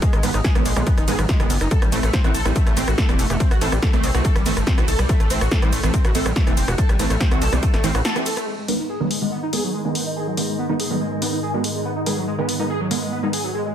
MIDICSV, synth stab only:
0, 0, Header, 1, 2, 480
1, 0, Start_track
1, 0, Tempo, 422535
1, 25, Time_signature, 4, 2, 24, 8
1, 15619, End_track
2, 0, Start_track
2, 0, Title_t, "Synth stab"
2, 0, Program_c, 0, 62
2, 264, Note_on_c, 0, 51, 92
2, 264, Note_on_c, 0, 56, 79
2, 264, Note_on_c, 0, 59, 93
2, 388, Note_off_c, 0, 51, 0
2, 388, Note_off_c, 0, 56, 0
2, 388, Note_off_c, 0, 59, 0
2, 627, Note_on_c, 0, 51, 94
2, 627, Note_on_c, 0, 56, 81
2, 627, Note_on_c, 0, 59, 104
2, 744, Note_off_c, 0, 51, 0
2, 744, Note_off_c, 0, 56, 0
2, 744, Note_off_c, 0, 59, 0
2, 868, Note_on_c, 0, 51, 93
2, 868, Note_on_c, 0, 56, 80
2, 868, Note_on_c, 0, 59, 97
2, 984, Note_off_c, 0, 51, 0
2, 984, Note_off_c, 0, 59, 0
2, 985, Note_off_c, 0, 56, 0
2, 1225, Note_on_c, 0, 51, 91
2, 1225, Note_on_c, 0, 56, 78
2, 1225, Note_on_c, 0, 59, 99
2, 1418, Note_off_c, 0, 51, 0
2, 1418, Note_off_c, 0, 56, 0
2, 1418, Note_off_c, 0, 59, 0
2, 1588, Note_on_c, 0, 51, 83
2, 1588, Note_on_c, 0, 56, 74
2, 1588, Note_on_c, 0, 59, 94
2, 1704, Note_off_c, 0, 51, 0
2, 1704, Note_off_c, 0, 56, 0
2, 1704, Note_off_c, 0, 59, 0
2, 2184, Note_on_c, 0, 57, 83
2, 2184, Note_on_c, 0, 60, 100
2, 2185, Note_on_c, 0, 52, 91
2, 2308, Note_off_c, 0, 52, 0
2, 2308, Note_off_c, 0, 57, 0
2, 2308, Note_off_c, 0, 60, 0
2, 2548, Note_on_c, 0, 57, 85
2, 2549, Note_on_c, 0, 52, 98
2, 2549, Note_on_c, 0, 60, 102
2, 2665, Note_off_c, 0, 52, 0
2, 2665, Note_off_c, 0, 57, 0
2, 2665, Note_off_c, 0, 60, 0
2, 2788, Note_on_c, 0, 60, 93
2, 2789, Note_on_c, 0, 52, 87
2, 2789, Note_on_c, 0, 57, 84
2, 2905, Note_off_c, 0, 52, 0
2, 2905, Note_off_c, 0, 57, 0
2, 2905, Note_off_c, 0, 60, 0
2, 3145, Note_on_c, 0, 52, 86
2, 3145, Note_on_c, 0, 57, 81
2, 3145, Note_on_c, 0, 60, 100
2, 3338, Note_off_c, 0, 52, 0
2, 3338, Note_off_c, 0, 57, 0
2, 3338, Note_off_c, 0, 60, 0
2, 3509, Note_on_c, 0, 52, 83
2, 3509, Note_on_c, 0, 57, 77
2, 3509, Note_on_c, 0, 60, 90
2, 3625, Note_off_c, 0, 52, 0
2, 3625, Note_off_c, 0, 57, 0
2, 3625, Note_off_c, 0, 60, 0
2, 4105, Note_on_c, 0, 52, 92
2, 4105, Note_on_c, 0, 57, 81
2, 4105, Note_on_c, 0, 60, 100
2, 4228, Note_off_c, 0, 52, 0
2, 4228, Note_off_c, 0, 57, 0
2, 4228, Note_off_c, 0, 60, 0
2, 4468, Note_on_c, 0, 57, 90
2, 4468, Note_on_c, 0, 60, 107
2, 4469, Note_on_c, 0, 52, 93
2, 4585, Note_off_c, 0, 52, 0
2, 4585, Note_off_c, 0, 57, 0
2, 4585, Note_off_c, 0, 60, 0
2, 4707, Note_on_c, 0, 52, 91
2, 4707, Note_on_c, 0, 57, 84
2, 4707, Note_on_c, 0, 60, 100
2, 4824, Note_off_c, 0, 52, 0
2, 4824, Note_off_c, 0, 57, 0
2, 4824, Note_off_c, 0, 60, 0
2, 5064, Note_on_c, 0, 52, 91
2, 5064, Note_on_c, 0, 57, 78
2, 5064, Note_on_c, 0, 60, 98
2, 5258, Note_off_c, 0, 52, 0
2, 5258, Note_off_c, 0, 57, 0
2, 5258, Note_off_c, 0, 60, 0
2, 5428, Note_on_c, 0, 52, 86
2, 5428, Note_on_c, 0, 57, 78
2, 5428, Note_on_c, 0, 60, 91
2, 5544, Note_off_c, 0, 52, 0
2, 5544, Note_off_c, 0, 57, 0
2, 5544, Note_off_c, 0, 60, 0
2, 6024, Note_on_c, 0, 52, 90
2, 6024, Note_on_c, 0, 57, 81
2, 6024, Note_on_c, 0, 60, 102
2, 6148, Note_off_c, 0, 52, 0
2, 6148, Note_off_c, 0, 57, 0
2, 6148, Note_off_c, 0, 60, 0
2, 6388, Note_on_c, 0, 52, 92
2, 6388, Note_on_c, 0, 57, 84
2, 6388, Note_on_c, 0, 60, 101
2, 6504, Note_off_c, 0, 52, 0
2, 6504, Note_off_c, 0, 57, 0
2, 6504, Note_off_c, 0, 60, 0
2, 6628, Note_on_c, 0, 52, 89
2, 6628, Note_on_c, 0, 57, 83
2, 6628, Note_on_c, 0, 60, 99
2, 6744, Note_off_c, 0, 52, 0
2, 6744, Note_off_c, 0, 57, 0
2, 6744, Note_off_c, 0, 60, 0
2, 6984, Note_on_c, 0, 52, 89
2, 6984, Note_on_c, 0, 57, 86
2, 6984, Note_on_c, 0, 60, 99
2, 7178, Note_off_c, 0, 52, 0
2, 7178, Note_off_c, 0, 57, 0
2, 7178, Note_off_c, 0, 60, 0
2, 7348, Note_on_c, 0, 52, 82
2, 7348, Note_on_c, 0, 57, 74
2, 7348, Note_on_c, 0, 60, 95
2, 7464, Note_off_c, 0, 52, 0
2, 7464, Note_off_c, 0, 57, 0
2, 7464, Note_off_c, 0, 60, 0
2, 7944, Note_on_c, 0, 52, 92
2, 7944, Note_on_c, 0, 57, 80
2, 7944, Note_on_c, 0, 60, 92
2, 8068, Note_off_c, 0, 52, 0
2, 8068, Note_off_c, 0, 57, 0
2, 8068, Note_off_c, 0, 60, 0
2, 8307, Note_on_c, 0, 57, 85
2, 8307, Note_on_c, 0, 60, 103
2, 8308, Note_on_c, 0, 52, 95
2, 8424, Note_off_c, 0, 52, 0
2, 8424, Note_off_c, 0, 57, 0
2, 8424, Note_off_c, 0, 60, 0
2, 8548, Note_on_c, 0, 52, 93
2, 8548, Note_on_c, 0, 57, 83
2, 8548, Note_on_c, 0, 60, 105
2, 8664, Note_off_c, 0, 52, 0
2, 8664, Note_off_c, 0, 57, 0
2, 8665, Note_off_c, 0, 60, 0
2, 8904, Note_on_c, 0, 57, 95
2, 8904, Note_on_c, 0, 60, 118
2, 8905, Note_on_c, 0, 52, 105
2, 9098, Note_off_c, 0, 52, 0
2, 9098, Note_off_c, 0, 57, 0
2, 9098, Note_off_c, 0, 60, 0
2, 9268, Note_on_c, 0, 52, 82
2, 9268, Note_on_c, 0, 57, 72
2, 9268, Note_on_c, 0, 60, 91
2, 9385, Note_off_c, 0, 52, 0
2, 9385, Note_off_c, 0, 57, 0
2, 9385, Note_off_c, 0, 60, 0
2, 9864, Note_on_c, 0, 51, 88
2, 9864, Note_on_c, 0, 59, 96
2, 9865, Note_on_c, 0, 56, 79
2, 9988, Note_off_c, 0, 51, 0
2, 9988, Note_off_c, 0, 56, 0
2, 9988, Note_off_c, 0, 59, 0
2, 10228, Note_on_c, 0, 51, 89
2, 10228, Note_on_c, 0, 56, 81
2, 10228, Note_on_c, 0, 59, 101
2, 10345, Note_off_c, 0, 51, 0
2, 10345, Note_off_c, 0, 56, 0
2, 10345, Note_off_c, 0, 59, 0
2, 10468, Note_on_c, 0, 51, 86
2, 10468, Note_on_c, 0, 56, 77
2, 10468, Note_on_c, 0, 59, 96
2, 10584, Note_off_c, 0, 56, 0
2, 10585, Note_off_c, 0, 51, 0
2, 10585, Note_off_c, 0, 59, 0
2, 10824, Note_on_c, 0, 51, 85
2, 10824, Note_on_c, 0, 56, 81
2, 10824, Note_on_c, 0, 59, 98
2, 11018, Note_off_c, 0, 51, 0
2, 11018, Note_off_c, 0, 56, 0
2, 11018, Note_off_c, 0, 59, 0
2, 11188, Note_on_c, 0, 51, 81
2, 11188, Note_on_c, 0, 56, 70
2, 11188, Note_on_c, 0, 59, 92
2, 11304, Note_off_c, 0, 51, 0
2, 11304, Note_off_c, 0, 56, 0
2, 11304, Note_off_c, 0, 59, 0
2, 11784, Note_on_c, 0, 51, 84
2, 11784, Note_on_c, 0, 56, 78
2, 11784, Note_on_c, 0, 59, 91
2, 11908, Note_off_c, 0, 51, 0
2, 11908, Note_off_c, 0, 56, 0
2, 11908, Note_off_c, 0, 59, 0
2, 12148, Note_on_c, 0, 51, 95
2, 12148, Note_on_c, 0, 56, 83
2, 12148, Note_on_c, 0, 59, 102
2, 12264, Note_off_c, 0, 56, 0
2, 12264, Note_off_c, 0, 59, 0
2, 12265, Note_off_c, 0, 51, 0
2, 12388, Note_on_c, 0, 51, 88
2, 12388, Note_on_c, 0, 56, 78
2, 12388, Note_on_c, 0, 59, 93
2, 12504, Note_off_c, 0, 51, 0
2, 12504, Note_off_c, 0, 56, 0
2, 12504, Note_off_c, 0, 59, 0
2, 12745, Note_on_c, 0, 51, 87
2, 12745, Note_on_c, 0, 56, 78
2, 12745, Note_on_c, 0, 59, 96
2, 12938, Note_off_c, 0, 51, 0
2, 12938, Note_off_c, 0, 56, 0
2, 12938, Note_off_c, 0, 59, 0
2, 13108, Note_on_c, 0, 51, 84
2, 13108, Note_on_c, 0, 56, 78
2, 13108, Note_on_c, 0, 59, 90
2, 13224, Note_off_c, 0, 51, 0
2, 13224, Note_off_c, 0, 56, 0
2, 13224, Note_off_c, 0, 59, 0
2, 13704, Note_on_c, 0, 51, 86
2, 13704, Note_on_c, 0, 59, 92
2, 13705, Note_on_c, 0, 56, 79
2, 13828, Note_off_c, 0, 51, 0
2, 13828, Note_off_c, 0, 56, 0
2, 13828, Note_off_c, 0, 59, 0
2, 14068, Note_on_c, 0, 51, 93
2, 14068, Note_on_c, 0, 56, 88
2, 14068, Note_on_c, 0, 59, 101
2, 14184, Note_off_c, 0, 51, 0
2, 14184, Note_off_c, 0, 56, 0
2, 14184, Note_off_c, 0, 59, 0
2, 14308, Note_on_c, 0, 51, 86
2, 14308, Note_on_c, 0, 56, 80
2, 14308, Note_on_c, 0, 59, 92
2, 14424, Note_off_c, 0, 51, 0
2, 14424, Note_off_c, 0, 56, 0
2, 14424, Note_off_c, 0, 59, 0
2, 14665, Note_on_c, 0, 51, 84
2, 14665, Note_on_c, 0, 56, 80
2, 14665, Note_on_c, 0, 59, 97
2, 14858, Note_off_c, 0, 51, 0
2, 14858, Note_off_c, 0, 56, 0
2, 14858, Note_off_c, 0, 59, 0
2, 15028, Note_on_c, 0, 51, 86
2, 15028, Note_on_c, 0, 56, 77
2, 15028, Note_on_c, 0, 59, 89
2, 15144, Note_off_c, 0, 51, 0
2, 15144, Note_off_c, 0, 56, 0
2, 15144, Note_off_c, 0, 59, 0
2, 15619, End_track
0, 0, End_of_file